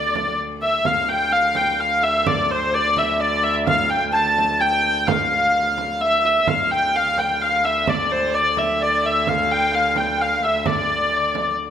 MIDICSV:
0, 0, Header, 1, 5, 480
1, 0, Start_track
1, 0, Key_signature, -1, "minor"
1, 0, Tempo, 469116
1, 875, Time_signature, 3, 2, 24, 8
1, 5671, Tempo, 463320
1, 12052, End_track
2, 0, Start_track
2, 0, Title_t, "Hurdy-gurdy"
2, 0, Program_c, 0, 110
2, 0, Note_on_c, 0, 74, 69
2, 396, Note_off_c, 0, 74, 0
2, 641, Note_on_c, 0, 76, 75
2, 882, Note_off_c, 0, 76, 0
2, 882, Note_on_c, 0, 77, 78
2, 1112, Note_on_c, 0, 79, 83
2, 1119, Note_off_c, 0, 77, 0
2, 1353, Note_on_c, 0, 77, 93
2, 1355, Note_off_c, 0, 79, 0
2, 1600, Note_off_c, 0, 77, 0
2, 1600, Note_on_c, 0, 79, 84
2, 1842, Note_off_c, 0, 79, 0
2, 1842, Note_on_c, 0, 77, 88
2, 2080, Note_off_c, 0, 77, 0
2, 2080, Note_on_c, 0, 76, 80
2, 2321, Note_off_c, 0, 76, 0
2, 2321, Note_on_c, 0, 74, 83
2, 2567, Note_off_c, 0, 74, 0
2, 2567, Note_on_c, 0, 72, 81
2, 2810, Note_off_c, 0, 72, 0
2, 2810, Note_on_c, 0, 74, 97
2, 3050, Note_off_c, 0, 74, 0
2, 3050, Note_on_c, 0, 76, 86
2, 3272, Note_on_c, 0, 74, 82
2, 3284, Note_off_c, 0, 76, 0
2, 3512, Note_off_c, 0, 74, 0
2, 3512, Note_on_c, 0, 76, 82
2, 3621, Note_off_c, 0, 76, 0
2, 3760, Note_on_c, 0, 77, 92
2, 3989, Note_off_c, 0, 77, 0
2, 3989, Note_on_c, 0, 79, 97
2, 4099, Note_off_c, 0, 79, 0
2, 4226, Note_on_c, 0, 81, 100
2, 4715, Note_off_c, 0, 81, 0
2, 4715, Note_on_c, 0, 79, 93
2, 5194, Note_off_c, 0, 79, 0
2, 5194, Note_on_c, 0, 77, 83
2, 6154, Note_off_c, 0, 77, 0
2, 6154, Note_on_c, 0, 76, 90
2, 6401, Note_off_c, 0, 76, 0
2, 6401, Note_on_c, 0, 76, 80
2, 6645, Note_off_c, 0, 76, 0
2, 6645, Note_on_c, 0, 77, 78
2, 6883, Note_off_c, 0, 77, 0
2, 6883, Note_on_c, 0, 79, 87
2, 7137, Note_off_c, 0, 79, 0
2, 7137, Note_on_c, 0, 77, 97
2, 7376, Note_off_c, 0, 77, 0
2, 7376, Note_on_c, 0, 79, 84
2, 7613, Note_off_c, 0, 79, 0
2, 7613, Note_on_c, 0, 77, 82
2, 7854, Note_off_c, 0, 77, 0
2, 7854, Note_on_c, 0, 76, 80
2, 8105, Note_off_c, 0, 76, 0
2, 8105, Note_on_c, 0, 74, 82
2, 8343, Note_off_c, 0, 74, 0
2, 8343, Note_on_c, 0, 72, 79
2, 8571, Note_off_c, 0, 72, 0
2, 8571, Note_on_c, 0, 74, 87
2, 8821, Note_off_c, 0, 74, 0
2, 8821, Note_on_c, 0, 76, 82
2, 9072, Note_off_c, 0, 76, 0
2, 9072, Note_on_c, 0, 74, 79
2, 9314, Note_off_c, 0, 74, 0
2, 9314, Note_on_c, 0, 76, 84
2, 9551, Note_off_c, 0, 76, 0
2, 9551, Note_on_c, 0, 77, 87
2, 9786, Note_off_c, 0, 77, 0
2, 9786, Note_on_c, 0, 79, 89
2, 10023, Note_off_c, 0, 79, 0
2, 10023, Note_on_c, 0, 77, 88
2, 10259, Note_off_c, 0, 77, 0
2, 10259, Note_on_c, 0, 79, 81
2, 10511, Note_off_c, 0, 79, 0
2, 10511, Note_on_c, 0, 77, 81
2, 10747, Note_off_c, 0, 77, 0
2, 10747, Note_on_c, 0, 76, 78
2, 10976, Note_off_c, 0, 76, 0
2, 10976, Note_on_c, 0, 74, 70
2, 11882, Note_off_c, 0, 74, 0
2, 12052, End_track
3, 0, Start_track
3, 0, Title_t, "Shawm"
3, 0, Program_c, 1, 111
3, 0, Note_on_c, 1, 74, 82
3, 395, Note_off_c, 1, 74, 0
3, 646, Note_on_c, 1, 76, 69
3, 865, Note_off_c, 1, 76, 0
3, 888, Note_on_c, 1, 77, 80
3, 1106, Note_off_c, 1, 77, 0
3, 1146, Note_on_c, 1, 79, 70
3, 1356, Note_off_c, 1, 79, 0
3, 1375, Note_on_c, 1, 77, 75
3, 1814, Note_off_c, 1, 77, 0
3, 1851, Note_on_c, 1, 77, 78
3, 2069, Note_off_c, 1, 77, 0
3, 2103, Note_on_c, 1, 76, 72
3, 2330, Note_on_c, 1, 74, 81
3, 2346, Note_off_c, 1, 76, 0
3, 2565, Note_off_c, 1, 74, 0
3, 2576, Note_on_c, 1, 72, 70
3, 2805, Note_on_c, 1, 74, 75
3, 2820, Note_off_c, 1, 72, 0
3, 3039, Note_off_c, 1, 74, 0
3, 3045, Note_on_c, 1, 76, 72
3, 3284, Note_on_c, 1, 74, 76
3, 3299, Note_off_c, 1, 76, 0
3, 3741, Note_off_c, 1, 74, 0
3, 3747, Note_on_c, 1, 77, 96
3, 3975, Note_off_c, 1, 77, 0
3, 3991, Note_on_c, 1, 79, 86
3, 4241, Note_on_c, 1, 81, 100
3, 4257, Note_off_c, 1, 79, 0
3, 4721, Note_on_c, 1, 79, 84
3, 4737, Note_off_c, 1, 81, 0
3, 5197, Note_off_c, 1, 79, 0
3, 5209, Note_on_c, 1, 77, 85
3, 5852, Note_off_c, 1, 77, 0
3, 6162, Note_on_c, 1, 76, 77
3, 6383, Note_off_c, 1, 76, 0
3, 6397, Note_on_c, 1, 76, 81
3, 6633, Note_on_c, 1, 77, 96
3, 6648, Note_off_c, 1, 76, 0
3, 6877, Note_off_c, 1, 77, 0
3, 6884, Note_on_c, 1, 79, 81
3, 7106, Note_off_c, 1, 79, 0
3, 7120, Note_on_c, 1, 77, 79
3, 7344, Note_off_c, 1, 77, 0
3, 7366, Note_on_c, 1, 79, 82
3, 7588, Note_off_c, 1, 79, 0
3, 7600, Note_on_c, 1, 77, 85
3, 7840, Note_on_c, 1, 76, 74
3, 7855, Note_off_c, 1, 77, 0
3, 8098, Note_on_c, 1, 74, 82
3, 8114, Note_off_c, 1, 76, 0
3, 8571, Note_off_c, 1, 74, 0
3, 8581, Note_on_c, 1, 74, 70
3, 8819, Note_on_c, 1, 76, 77
3, 8835, Note_off_c, 1, 74, 0
3, 9045, Note_off_c, 1, 76, 0
3, 9051, Note_on_c, 1, 74, 75
3, 9271, Note_off_c, 1, 74, 0
3, 9301, Note_on_c, 1, 76, 76
3, 9543, Note_on_c, 1, 77, 89
3, 9559, Note_off_c, 1, 76, 0
3, 10002, Note_off_c, 1, 77, 0
3, 10009, Note_on_c, 1, 77, 82
3, 10229, Note_off_c, 1, 77, 0
3, 10272, Note_on_c, 1, 79, 72
3, 10506, Note_on_c, 1, 77, 74
3, 10522, Note_off_c, 1, 79, 0
3, 10731, Note_on_c, 1, 76, 66
3, 10747, Note_off_c, 1, 77, 0
3, 10974, Note_on_c, 1, 74, 78
3, 10990, Note_off_c, 1, 76, 0
3, 11922, Note_off_c, 1, 74, 0
3, 12052, End_track
4, 0, Start_track
4, 0, Title_t, "Viola da gamba"
4, 0, Program_c, 2, 42
4, 0, Note_on_c, 2, 38, 68
4, 876, Note_off_c, 2, 38, 0
4, 884, Note_on_c, 2, 38, 67
4, 6646, Note_off_c, 2, 38, 0
4, 6652, Note_on_c, 2, 38, 63
4, 12052, Note_off_c, 2, 38, 0
4, 12052, End_track
5, 0, Start_track
5, 0, Title_t, "Frame drum"
5, 157, Note_on_c, 9, 64, 66
5, 259, Note_off_c, 9, 64, 0
5, 396, Note_on_c, 9, 64, 24
5, 498, Note_off_c, 9, 64, 0
5, 631, Note_on_c, 9, 64, 23
5, 734, Note_off_c, 9, 64, 0
5, 869, Note_on_c, 9, 64, 67
5, 972, Note_off_c, 9, 64, 0
5, 1587, Note_on_c, 9, 64, 62
5, 1689, Note_off_c, 9, 64, 0
5, 2317, Note_on_c, 9, 64, 82
5, 2420, Note_off_c, 9, 64, 0
5, 3036, Note_on_c, 9, 64, 64
5, 3139, Note_off_c, 9, 64, 0
5, 3758, Note_on_c, 9, 64, 81
5, 3861, Note_off_c, 9, 64, 0
5, 4484, Note_on_c, 9, 64, 64
5, 4587, Note_off_c, 9, 64, 0
5, 5198, Note_on_c, 9, 64, 86
5, 5300, Note_off_c, 9, 64, 0
5, 5435, Note_on_c, 9, 64, 27
5, 5537, Note_off_c, 9, 64, 0
5, 5679, Note_on_c, 9, 64, 25
5, 5783, Note_off_c, 9, 64, 0
5, 5914, Note_on_c, 9, 64, 60
5, 6018, Note_off_c, 9, 64, 0
5, 6155, Note_on_c, 9, 64, 27
5, 6258, Note_off_c, 9, 64, 0
5, 6635, Note_on_c, 9, 64, 78
5, 6739, Note_off_c, 9, 64, 0
5, 7363, Note_on_c, 9, 64, 57
5, 7467, Note_off_c, 9, 64, 0
5, 8086, Note_on_c, 9, 64, 76
5, 8190, Note_off_c, 9, 64, 0
5, 8809, Note_on_c, 9, 64, 67
5, 8912, Note_off_c, 9, 64, 0
5, 9535, Note_on_c, 9, 64, 70
5, 9638, Note_off_c, 9, 64, 0
5, 10245, Note_on_c, 9, 64, 67
5, 10348, Note_off_c, 9, 64, 0
5, 10970, Note_on_c, 9, 64, 81
5, 11073, Note_off_c, 9, 64, 0
5, 11450, Note_on_c, 9, 64, 28
5, 11553, Note_off_c, 9, 64, 0
5, 11688, Note_on_c, 9, 64, 63
5, 11792, Note_off_c, 9, 64, 0
5, 12052, End_track
0, 0, End_of_file